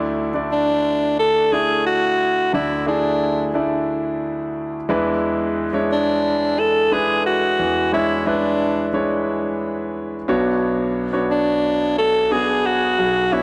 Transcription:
0.00 2.50 D2 medium
0.00 2.50 D3 medium
0.00 0.29 A3 medium
0.00 0.29 D4 medium
0.00 0.30 E4 medium
0.00 0.30 D5 medium
0.34 1.41 A3 medium
0.34 1.41 D4 medium
0.34 1.41 E4 medium
0.34 1.41 D5 medium
0.52 1.15 D4 medium
1.19 1.54 A4 medium
1.52 2.43 A3 medium
1.52 2.44 D4 medium
1.52 2.44 E4 medium
1.52 1.86 G#4 loud
1.52 2.44 D5 medium
1.86 2.50 F#4 medium
2.53 4.86 D2 medium
2.53 4.85 D3 medium
2.53 2.84 A3 medium
2.53 2.84 D4 medium
2.53 2.84 E4 medium
2.53 2.85 E4 medium
2.53 2.84 D5 medium
2.87 3.48 A3 medium
2.87 3.48 D4 medium
2.87 3.51 D4 medium
2.87 3.48 E4 medium
2.87 3.48 G#4 medium
3.54 4.76 A3 medium
3.54 4.76 D4 medium
3.54 4.76 E4 medium
3.54 4.77 D5 medium
4.89 7.55 E2 medium
4.89 7.55 E3 medium
4.89 5.65 G#3 medium
4.89 5.65 D4 medium
4.89 5.66 E4 medium
4.89 5.66 B4 medium
5.73 6.80 G#3 medium
5.73 6.80 D4 medium
5.73 6.80 E4 medium
5.73 6.80 C#5 medium
5.92 6.61 D4 medium
6.60 6.95 A4 loud
6.91 7.83 G#3 medium
6.91 7.83 D4 medium
6.91 7.83 E4 medium
6.91 7.26 G#4 loud
6.91 7.83 B4 medium
7.26 7.89 F#4 medium
7.59 10.25 E2 medium
7.59 10.25 E3 medium
7.92 8.23 G#3 medium
7.92 8.23 D4 medium
7.92 8.23 E4 medium
7.92 8.29 E4 medium
7.92 8.24 C#5 medium
8.26 8.87 G#3 medium
8.26 8.87 D4 medium
8.26 8.94 D4 medium
8.26 8.88 E4 medium
8.26 8.88 B4 medium
8.93 10.15 G#3 medium
8.93 10.15 D4 medium
8.93 10.16 E4 medium
8.93 10.16 C#5 medium
10.28 12.94 B1 medium
10.28 12.94 B2 medium
10.28 11.04 B3 medium
10.28 11.05 D4 medium
10.28 11.05 F#4 medium
10.28 11.05 C#5 medium
11.13 12.19 B3 medium
11.13 12.19 D4 medium
11.13 12.20 F#4 medium
11.13 12.20 C#5 medium
11.31 11.94 D4 medium
11.98 12.34 A4 loud
12.30 13.22 B3 medium
12.30 13.22 D4 medium
12.30 13.22 F#4 medium
12.30 13.23 G#4 medium
12.30 12.67 G#4 loud
12.66 13.35 F#4 medium
12.98 13.43 B1 medium
12.98 13.43 B2 medium
13.32 13.43 B3 medium
13.32 13.43 D4 medium
13.32 13.43 E4 medium
13.32 13.43 F#4 medium
13.32 13.43 C#5 medium

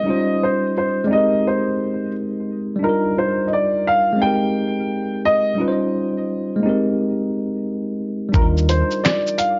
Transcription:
0.00 1.09 G3 medium
0.00 0.44 D#5 loud
0.05 1.09 C#4 medium
0.05 1.10 D#4 medium
0.05 1.11 F4 medium
0.10 1.12 C5 medium
0.43 0.76 C5 medium
0.78 1.04 C5 medium
1.04 2.76 G#3 medium
1.04 2.78 C4 medium
1.04 1.11 D5 medium
1.11 2.80 D#4 medium
1.11 2.81 G4 medium
1.11 1.47 D#5 medium
1.18 2.83 A#4 medium
1.47 2.11 C5 medium
2.76 4.14 G3 medium
2.76 4.16 D4 medium
2.83 4.18 D#4 medium
2.83 4.19 F4 medium
2.83 3.15 A#4 medium
2.89 4.21 A#4 medium
3.18 3.48 C5 medium
3.47 3.52 D#5 medium
3.53 3.88 D5 medium
3.87 4.19 F5 loud
4.13 5.52 G#3 medium
4.13 5.53 C4 medium
4.19 5.55 D#4 medium
4.19 5.57 G4 medium
4.19 5.21 G5 loud
4.26 5.59 A#4 medium
5.25 5.60 D#5 loud
5.55 6.60 G3 medium
5.55 6.61 C#4 medium
5.55 6.62 D#4 medium
5.60 6.63 F4 medium
5.60 5.68 B4 medium
5.68 6.67 C5 medium
6.56 8.28 G#3 medium
6.56 6.69 A#3 soft
6.63 8.33 C4 medium
6.63 8.31 D#4 medium
6.63 8.33 G4 medium
6.69 8.35 A#4 medium
8.29 9.59 G3 medium
8.29 9.59 D4 medium
8.34 8.81 D#2 loud
8.34 9.59 D#4 medium
8.34 8.43 A#4 medium
8.34 kick loud
8.34 shaker medium
8.38 9.59 F4 medium
8.38 9.59 A#4 medium
8.57 shaker soft
8.69 9.05 C5 medium
8.69 closed hi-hat medium
8.69 shaker soft
8.91 shaker soft
9.04 9.39 D5 medium
9.04 snare medium
9.04 clap medium
9.04 shaker medium
9.27 shaker soft
9.38 9.59 F5 medium
9.38 closed hi-hat medium
9.38 shaker soft

